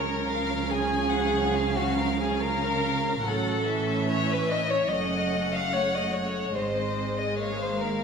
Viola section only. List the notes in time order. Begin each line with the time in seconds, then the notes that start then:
Already playing: F3 C#4
3.24 F#3 C#4
3.66 E3
4.90 A3 C#4
5.73 A3
6.56 G#3 C4
7.39 A#3